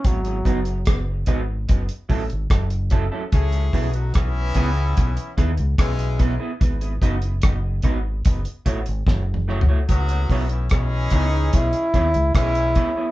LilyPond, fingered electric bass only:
\new Staff \with { instrumentName = "Fingered electric bass" } { \clef bass \time 4/4 \key cis \minor \tempo 4 = 73 gis,,8 fis,,8 fis,,8 gis,,8 fis,,16 r16 a,,16 gis,,16 fis,,8. r16 | cis,8 b,,8 b,,8 cis,8 b,,16 r16 dis,16 cis,16 b,,8. r16 | gis,,8 fis,,8 fis,,8 gis,,8 fis,,16 r16 a,,16 gis,,16 fis,,8. r16 | cis,8 b,,8 b,,8 cis,8 b,,16 r16 dis,16 cis,16 r4 | }